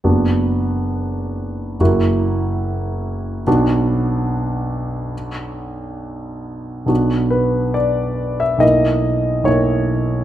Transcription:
<<
  \new Staff \with { instrumentName = "Grand piano" } { \time 2/4 \key b \minor \tempo 4 = 71 r2 | r2 | r2 | r2 |
r8 b'8 d''8. e''16 | dis''4 cis''4 | }
  \new Staff \with { instrumentName = "Grand piano" } { \time 2/4 \key b \minor <fis,, b d' fis'>2 | <fis,, ais e' fis'>2 | <b,, b d' fis'>2~ | <b,, b d' fis'>2 |
<b,, b d' fis'>2 | <b,, ais e'>4 <b,, ais e'>4 | }
>>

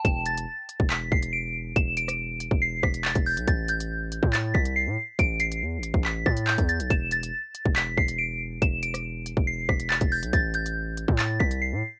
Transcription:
<<
  \new Staff \with { instrumentName = "Synth bell" } { \time 4/4 \key e \minor \tempo 4 = 140 e''''8 a'''4. b'''8 c''''8 d''''8 r8 | e''''8 d''''4. c''''8 b'''8 a'''8 g'''8 | a'''8 g'''4. a'''8 b'''8 c''''8 r8 | d''''8 c''''4. b'''8 a'''8 g'''8 a'''8 |
e''''8 a'''4. b'''8 c''''8 d''''8 r8 | e''''8 d''''4. c''''8 b'''8 a'''8 g'''8 | a'''8 g'''4. a'''8 b'''8 c''''8 r8 | }
  \new Staff \with { instrumentName = "808-style bass" } { \clef bass \time 4/4 \key e \minor e,,4 r8. e,,8. e,,4. | e,,4.~ e,,16 e,,8. e,,8. e,,8 b,,16 | a,,4.~ a,,16 a,8. c,8. a,16 r8 | a,,4 e,16. a,,16. a,,8. a,8. e,8 b,,16 |
e,,4 r8. e,,8. e,,4. | e,,4.~ e,,16 e,,8. e,,8. e,,8 b,,16 | a,,4.~ a,,16 a,8. c,8. a,16 r8 | }
  \new DrumStaff \with { instrumentName = "Drums" } \drummode { \time 4/4 <hh bd>8 hh16 hh16 r8 hh16 bd16 <hc hh>8 bd16 hh16 r4 | <hh bd>8 hh16 <hh ss>16 r8 hh16 bd16 r8 <bd ss>16 hh16 hc16 <hh bd>16 hho16 hh16 | <hh bd>8 hh16 hh16 r8 hh16 bd16 <hc hh>8 bd16 hh16 r4 | <hh bd>8 hh16 hh16 r8 hh16 bd16 hc8 <bd ss>16 hh16 hc16 <hh bd>16 hh16 hh16 |
<hh bd>8 hh16 hh16 r8 hh16 bd16 <hc hh>8 bd16 hh16 r4 | <hh bd>8 hh16 <hh ss>16 r8 hh16 bd16 r8 <bd ss>16 hh16 hc16 <hh bd>16 hho16 hh16 | <hh bd>8 hh16 hh16 r8 hh16 bd16 <hc hh>8 bd16 hh16 r4 | }
>>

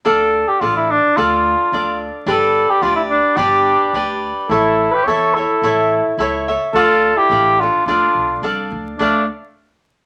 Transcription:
<<
  \new Staff \with { instrumentName = "Cavaquinho" } { \time 2/4 \key d \dorian \tempo 4 = 107 <d' a' d'' f''>4 <d' a' d'' f''>4 | <d' a' d'' f''>4 <d' a' d'' f''>4 | <d' g' b' d''>4 <d' g' b' d''>4 | <d' g' b' d''>4 <d' g' b' d''>4 |
<e' a' cis'' e''>4 <e' a' cis'' e''>8 <a' cis'' e''>8 | <e' a' cis'' e''>4 <e' a' cis'' e''>8 <a' cis'' e''>8 | <d' a' d'' f''>4 <d' a' d'' f''>8 <a' d'' f''>8 | <d' a' d'' f''>4 <d' a' d'' f''>4 |
<d' a' d'' f''>8 r4. | }
  \new Staff \with { instrumentName = "Cor anglais" } { \time 2/4 \key d \dorian a'8. g'16 f'16 e'16 d'8 | f'4. r8 | a'8. g'16 f'16 e'16 d'8 | g'4. r8 |
a'8. b'16 cis''8 a'8~ | a'4 r4 | a'8. g'8. f'8 | f'4 r4 |
d'8 r4. | }
  \new Staff \with { instrumentName = "Trumpet" } { \time 2/4 \key d \dorian r2 | r2 | r2 | d'4. r8 |
e'8. g'16 a'8 e'8~ | e'4 r4 | f'8. e'8. d'8 | d'4 r4 |
a8 r4. | }
  \new Staff \with { instrumentName = "Upright bass" } { \clef bass \time 2/4 \key d \dorian d,4 a,,4 | d,4 d,4 | g,,4 d,4 | g,,4 d,4 |
a,,4 e,4 | a,,4 cis,4 | d,4 a,,4 | d,8 b,,8 c,8 d,8 |
d,8 r4. | }
>>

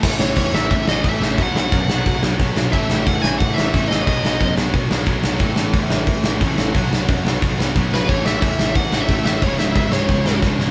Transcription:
<<
  \new Staff \with { instrumentName = "Lead electric guitar" } { \time 4/4 \key a \lydian \tempo 4 = 179 r8 cis''8 cis''8 e''8 e''8 dis''8 e''4 | fis''8 fis''2 r4. | e''4 fis''8 gis''8 fis''8 e''4 dis''8~ | dis''4. r2 r8 |
r1 | r2. r8 b'8 | cis''8 e''4. fis''8. e''8. e''8 | cis''8 e''8 e''8 cis''4. r4 | }
  \new Staff \with { instrumentName = "Distorted electric guitar" } { \clef bass \time 4/4 \key a \lydian <a, e a>2~ <a, e a>8 <a, e a>8 <a, e a>4 | <b, fis b>2~ <b, fis b>8 <b, fis b>8 <b, fis b>4 | <a, e a>2~ <a, e a>8 <a, e a>8 <a, e a>4 | <b, fis b>2~ <b, fis b>8 <b, fis b>8 <b, fis b>4 |
<a, e a>2~ <a, e a>8 <a, e a>8 <a, e a>4 | <b, fis b>2~ <b, fis b>8 <b, fis b>8 <b, fis b>4 | <a, e a>2~ <a, e a>8 <a, e a>8 <a, e a>4 | <cis, gis, cis>2~ <cis, gis, cis>8 <cis, gis, cis>8 <cis, gis, cis>4 | }
  \new Staff \with { instrumentName = "Overdriven electric guitar" } { \clef bass \time 4/4 \key a \lydian <a, e a>4. <a, e a>4. <a, e a>4 | <b, fis b>4. <b, fis b>4. <b, fis b>4 | <a, e a>4. <a, e a>4. <a, e a>4 | <b, fis b>4. <b, fis b>4. <b, fis b>4 |
<a, e a>4. <a, e a>4. <a, e a>4 | <b, fis b>4. <b, fis b>4. <b, fis b>4 | <a, e a>4. <a, e a>4. <a, e a>4 | <cis, gis, cis>4. <cis, gis, cis>4. <cis, gis, cis>4 | }
  \new Staff \with { instrumentName = "Overdriven electric guitar" } { \clef bass \time 4/4 \key a \lydian <a, e a>2.~ <a, e a>8 <a, e a>8 | <b, fis b>2.~ <b, fis b>8 <b, fis b>8 | <a, e a>2.~ <a, e a>8 <a, e a>8 | <b, fis b>2.~ <b, fis b>8 <b, fis b>8 |
<a, e a>2.~ <a, e a>8 <a, e a>8 | <b, fis b>2.~ <b, fis b>8 <b, fis b>8 | <a, e a>2.~ <a, e a>8 <a, e a>8 | <cis, gis, cis>2.~ <cis, gis, cis>8 <cis, gis, cis>8 | }
  \new Staff \with { instrumentName = "Picked electric bass" } { \clef bass \time 4/4 \key a \lydian a,,8 a,,8 e,8 a,,8 a,,8 a,,8 a,,8 a,,8 | b,,8 b,,8 fis,8 b,,8 b,,8 b,,8 b,,8 b,,8 | a,,8 a,,8 e,8 a,,8 a,,8 a,,8 a,,8 a,,8 | b,,8 b,,8 fis,8 b,,8 b,,8 b,,8 b,,8 b,,8 |
a,,8 a,,8 e,8 a,,8 a,,8 a,,8 a,,8 a,,8 | b,,8 b,,8 fis,8 b,,8 b,,8 b,,8 b,,8 b,,8 | a,,8 a,,8 e,8 a,,8 a,,8 a,,8 a,,8 a,,8 | cis,,8 cis,,8 gis,,8 cis,,8 cis,,8 cis,,8 cis,,8 cis,,8 | }
  \new DrumStaff \with { instrumentName = "Drums" } \drummode { \time 4/4 <cymc bd>8 sn8 <cymc bd>8 sn8 <cymc bd>8 sn8 <cymc bd>8 sn8 | <cymc bd>8 sn8 <cymc bd>8 sn8 <cymc bd>8 sn8 <cymc bd>8 sn8 | <cymc bd>8 sn8 <cymc bd>8 sn8 <cymc bd>8 sn8 <cymc bd>8 sn8 | <cymc bd>8 sn8 <cymc bd>8 sn8 <cymc bd>8 sn8 <cymc bd>8 sn8 |
<cymc bd>8 sn8 <cymc bd>8 sn8 <cymc bd>8 sn8 <cymc bd>8 sn8 | <cymc bd>8 sn8 <cymc bd>8 sn8 <cymc bd>8 sn8 <cymc bd>8 sn8 | <cymc bd>8 sn8 <cymc bd>8 sn8 <cymc bd>8 sn8 <cymc bd>8 sn8 | <cymc bd>8 sn8 <cymc bd>8 sn8 <cymc bd>8 sn8 <bd sn>8 sn8 | }
>>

